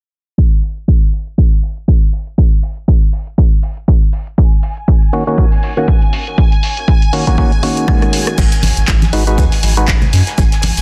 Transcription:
0.38 kick loud
0.52 closed hi-hat soft
0.63 open hi-hat loud
0.77 closed hi-hat medium
0.88 kick loud
1.02 closed hi-hat soft
1.13 open hi-hat medium
1.27 closed hi-hat medium
1.38 kick loud
1.52 open hi-hat medium
1.63 open hi-hat loud
1.77 closed hi-hat medium
1.88 kick loud
2.02 closed hi-hat soft
2.13 open hi-hat medium
2.27 closed hi-hat medium
2.38 kick loud
2.52 closed hi-hat medium
2.63 open hi-hat loud
2.77 closed hi-hat medium
2.88 kick loud
3.02 closed hi-hat soft
3.13 open hi-hat loud
3.27 closed hi-hat medium
3.38 kick loud
3.52 closed hi-hat soft
3.63 open hi-hat loud
3.77 closed hi-hat medium
3.88 kick loud
4.02 closed hi-hat soft
4.13 open hi-hat loud
4.27 closed hi-hat medium
4.38 8.37 G#5 medium
4.38 kick loud
4.52 closed hi-hat soft
4.63 open hi-hat loud
4.77 closed hi-hat medium
4.88 kick loud
5.02 closed hi-hat soft
5.13 5.24 D#3 medium
5.13 5.24 A#3 medium
5.13 5.24 C#4 medium
5.13 5.24 F#4 loud
5.13 open hi-hat loud
5.27 5.45 D#3 medium
5.27 5.45 A#3 medium
5.27 5.45 C#4 medium
5.27 5.45 F#4 medium
5.27 closed hi-hat medium
5.38 kick loud
5.52 open hi-hat medium
5.63 open hi-hat loud
5.77 5.87 D#3 medium
5.77 5.87 A#3 medium
5.77 5.88 C#4 medium
5.77 5.88 F#4 medium
5.77 closed hi-hat medium
5.88 kick loud
6.02 closed hi-hat soft
6.13 open hi-hat loud
6.27 closed hi-hat medium
6.38 kick loud
6.52 closed hi-hat soft
6.63 open hi-hat loud
6.77 closed hi-hat medium
6.88 kick loud
7.02 closed hi-hat soft
7.13 7.25 D#3 medium
7.13 7.25 A#3 medium
7.13 7.25 C#4 medium
7.13 7.25 F#4 medium
7.13 open hi-hat loud
7.27 7.36 D#3 medium
7.27 7.36 A#3 medium
7.27 7.36 C#4 medium
7.27 7.36 F#4 medium
7.27 kick medium
7.27 closed hi-hat medium
7.38 7.51 D#3 medium
7.38 7.51 A#3 medium
7.38 7.52 C#4 medium
7.38 7.52 F#4 medium
7.38 kick loud
7.38 swell medium
7.52 closed hi-hat soft
7.63 8.37 D#3 medium
7.63 8.37 A#3 medium
7.63 8.37 C#4 medium
7.63 8.37 F#4 loud
7.63 open hi-hat loud
7.77 closed hi-hat medium
7.88 kick loud
7.88 cross-stick medium
8.02 cross-stick medium
8.02 closed hi-hat soft
8.13 open hi-hat loud
8.27 cross-stick medium
8.27 closed hi-hat medium
8.38 8.47 G#1 medium
8.38 10.82 G#5 medium
8.38 kick loud
8.38 crash medium
8.38 shaker medium
8.52 closed hi-hat soft
8.52 closed hi-hat medium
8.63 8.72 G#1 medium
8.63 open hi-hat loud
8.63 high conga medium
8.63 low conga medium
8.63 shaker medium
8.77 8.84 G#1 loud
8.77 closed hi-hat medium
8.88 9.04 G#1 medium
8.88 kick loud
8.88 snare loud
8.88 clap loud
8.88 shaker medium
9.02 snare medium
9.02 closed hi-hat medium
9.02 high conga medium
9.13 9.39 G#1 medium
9.13 9.24 G#3 medium
9.13 9.24 D#4 medium
9.13 9.24 F#4 medium
9.13 9.24 B4 medium
9.13 open hi-hat loud
9.13 shaker medium
9.27 9.45 G#3 medium
9.27 9.45 D#4 medium
9.27 9.45 F#4 medium
9.27 9.45 B4 medium
9.27 closed hi-hat medium
9.38 9.47 D#2 medium
9.38 kick loud
9.38 shaker medium
9.52 snare soft
9.52 open hi-hat medium
9.63 9.93 G#1 medium
9.63 open hi-hat loud
9.63 high conga medium
9.63 shaker medium
9.77 9.87 G#3 medium
9.77 9.87 D#4 medium
9.77 9.88 F#4 medium
9.77 9.88 B4 medium
9.77 closed hi-hat medium
9.88 kick loud
9.88 snare loud
9.88 clap loud
9.88 shaker medium
10.02 closed hi-hat soft
10.02 low conga medium
10.13 10.22 F#2 medium
10.13 snare soft
10.13 open hi-hat loud
10.13 shaker medium
10.27 snare medium
10.27 closed hi-hat medium
10.38 10.47 G#1 medium
10.38 kick loud
10.38 shaker medium
10.52 snare soft
10.52 closed hi-hat soft
10.62 10.72 G#1 medium
10.62 snare soft
10.62 open hi-hat loud
10.62 high conga medium
10.62 low conga medium
10.62 shaker medium
10.77 10.82 G#1 loud
10.77 closed hi-hat medium
10.77 closed hi-hat soft

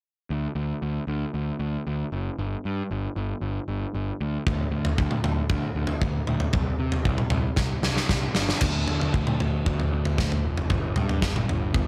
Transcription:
0.30 0.46 D2 medium
0.55 0.72 D2 medium
0.82 0.98 D2 medium
1.07 1.24 D2 medium
1.34 1.50 D2 medium
1.59 1.76 D2 medium
1.87 2.03 D2 medium
2.12 2.28 F#1 medium
2.39 2.55 G1 medium
2.65 2.81 G2 medium
2.91 3.07 G1 medium
3.16 3.33 G1 medium
3.41 3.58 G1 medium
3.68 3.84 G1 medium
3.94 4.11 G1 medium
4.21 4.37 D2 medium
4.46 4.63 D2 medium
4.46 kick medium
4.46 floor tom medium
4.71 4.88 D2 medium
4.85 floor tom medium
4.98 5.15 D2 medium
4.98 kick medium
5.11 mid tom medium
5.24 5.40 D2 medium
5.24 floor tom medium
5.24 mid tom medium
5.50 5.67 D2 medium
5.50 kick medium
5.50 floor tom medium
5.75 5.92 D2 medium
5.87 floor tom medium
6.01 6.18 D2 medium
6.01 kick medium
6.27 6.44 D2 medium
6.27 mid tom medium
6.40 floor tom medium
6.53 6.70 C2 medium
6.53 kick medium
6.53 floor tom medium
6.79 6.96 C3 medium
6.92 floor tom medium
7.05 7.22 C2 medium
7.05 kick medium
7.18 mid tom medium
7.30 7.48 C2 medium
7.30 floor tom medium
7.30 mid tom medium
7.56 7.74 C2 medium
7.56 kick loud
7.56 snare soft
7.82 7.99 C2 medium
7.82 snare medium
7.96 snare soft
8.09 8.26 C2 medium
8.09 kick medium
8.09 snare medium
8.35 8.52 G1 medium
8.35 snare medium
8.49 snare medium
8.61 8.85 D2 medium
8.61 kick medium
8.61 floor tom medium
8.61 crash medium
8.87 9.10 D3 medium
8.87 floor tom medium
9.01 floor tom medium
9.13 9.37 D2 medium
9.13 kick medium
9.27 mid tom medium
9.40 9.63 D2 medium
9.40 floor tom medium
9.66 9.89 D2 medium
9.66 kick medium
9.66 floor tom medium
9.80 floor tom medium
9.93 10.16 D2 medium
10.05 floor tom medium
10.18 10.41 D2 medium
10.18 kick medium
10.18 snare medium
10.18 floor tom medium
10.18 mid tom medium
10.32 floor tom medium
10.46 10.68 F1 medium
10.57 floor tom medium
10.70 10.93 G1 medium
10.70 kick medium
10.70 floor tom medium
10.96 11.20 G2 medium
10.96 floor tom medium
10.96 mid tom medium
11.09 floor tom medium
11.21 11.45 G1 medium
11.21 kick medium
11.21 snare medium
11.36 mid tom medium
11.48 11.72 G1 medium
11.48 floor tom medium
11.74 11.87 G1 medium
11.74 kick medium
11.74 floor tom medium

